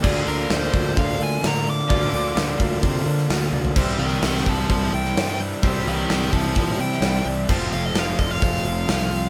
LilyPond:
<<
  \new Staff \with { instrumentName = "Lead electric guitar" } { \time 4/4 \key c \mixolydian \tempo 4 = 129 aes'8 bes'8 c''4 f''8 aes''8 bes''8 d'''8~ | d'''2~ d'''8 r4. | r8 <bes' g''>8 <bes' g''>8 <c'' a''>8 <c'' a''>8 g''4 r8 | r8 <bes' g''>8 <bes' g''>8 <c'' a''>8 <c'' a''>8 g''4 r8 |
r8 f''16 ees''16 f''16 f''16 ees''16 f''16 f''2 | }
  \new Staff \with { instrumentName = "Grand piano" } { \time 4/4 \key c \mixolydian <d' f' bes' d''>8 <d' f' bes' d''>8 <d' f' bes' d''>8 <d' f' bes' d''>8 <d' f' bes' c''>8 <d' f' bes' d''>8 <d' f' bes' d''>8 <d' f' bes' d''>8 | <d' f' bes' d''>8 <d' f' bes' d''>8 <d' f' bes' d''>8 <d' f' bes' f''>8 <d' f' bes' c''>8 <d' f' bes' c''>8 <d' f' bes' d''>8 <d' f' bes' d''>8 | <c' e' g' c''>8 <c' e' g' d''>8 <c' e' g' c''>8 <c' e' g' c''>8 <c' e' g' c''>8 <c' e' g' a'>8 <c' e' g' c''>8 <c' e' g' c''>8 | <c' e' g' c''>8 <c' e' g' bes'>8 <c' e' g' c''>8 <c' e' g' c''>8 <c' e' g' c''>8 <c' e' g' c''>8 <c' e' g' c''>8 <c' e' g' d''>8 |
<c' f' a' c''>8 <c' f' a' c''>8 <c' f' a' ees''>8 <c' f' a' d''>8 <c' f' a' c''>8 <c' f' a' c''>8 <c' f' a' c''>8 <c' f' a' c''>8 | }
  \new Staff \with { instrumentName = "Overdriven electric guitar" } { \time 4/4 \key c \mixolydian d8 d8 d'8 f'8 d'8 f'8 bes8 d8 | d8 d8 d'8 f'8 d'8 f'8 bes8 d8 | c8 e8 c'8 e'8 c'8 e'8 g8 e8 | c8 e8 c'8 e'8 c'8 e'8 g8 e8 |
f,8 f8 c'8 f'8 c'8 f'8 a8 f8 | }
  \new Staff \with { instrumentName = "Overdriven electric guitar" } { \time 4/4 \key c \mixolydian <d bes d' f'>1 | <d bes d' f'>1 | <c e g c' e'>1 | <c e g c' e'>1 |
<f, c f a c' f'>1 | }
  \new Staff \with { instrumentName = "Fingered electric bass" } { \clef bass \time 4/4 \key c \mixolydian d,8 d,8 d,8 d,8 d,8 d,8 a,4 | d,8 d,8 d,8 d,8 c8 d8 d,8 d,8 | c,8 c,8 c,8 c,8 c,8 c,8 g,4 | c,8 c,8 c,8 c,8 bes,8 c8 c,8 c,8 |
f,,8 f,,8 f,,8 f,,8 f,,8 f,,8 c,4 | }
  \new DrumStaff \with { instrumentName = "Drums" } \drummode { \time 4/4 <cymc bd>8 hho8 <hho sn>16 sn16 <hho bd>8 <hho bd>8 hho8 <hho sn>8 hho8 | <hho bd>8 hho8 <hho sn>8 <hho bd>8 <hho bd>8 hho16 sn16 <hho sn>8 tommh16 tomfh16 | <cymc bd>8 hho8 <hho sn>8 <hho bd>8 <hho bd>8 hho16 sn16 <hho sn>8 hho8 | <hho bd>8 hho8 <hho sn>16 sn16 <hho bd>8 <hho bd>8 hho16 sn16 <hho sn>8 hho8 |
<cymc bd>8 hho8 <hho sn>8 <hho bd>8 <hho bd>8 hho8 <hho sn>8 hho8 | }
>>